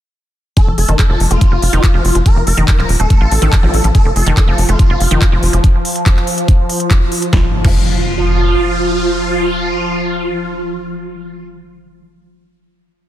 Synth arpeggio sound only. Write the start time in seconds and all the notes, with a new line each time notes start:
0.67 F3
0.88 D#3
1.10 F3
1.31 A3
1.52 F4
1.73 D#3
1.94 F3
2.15 F3
2.36 F3
2.58 D#3
2.79 F3
3.00 A3
3.21 F4
3.42 D#3
3.63 F3
3.84 F3
4.05 F3
4.26 D#3
4.48 F3
4.69 A3
4.90 F4
5.11 D#3
5.32 F3
5.53 F3
7.33 F3
7.65 F3